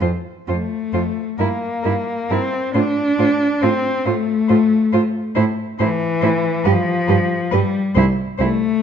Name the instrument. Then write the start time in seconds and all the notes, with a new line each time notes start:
cello
0.00 F2 F4 C5
0.47 F2 A3 F4 C5
0.93 F2 F4 C5
1.38 G2 A#3 E4 A#4
1.83 G2 E4 A#4
2.30 G2 C4 E4 A#4
2.74 A2 D4 F4 C5
3.19 A2 F4 C5
3.61 A2 C4 F4 C5
4.05 A2 A3 F4 C5
4.48 A2 F4 C5
4.92 A2 F4 C5
5.35 A2 E4 C5
5.79 A2 E3 E4 C5
6.21 A2 E4 C5
6.64 G2 F3 G4 B4
7.07 G2 G4 B4
7.51 G2 G3 G4 B4
7.95 C2 E4 C5
8.38 C2 A3 E4 C5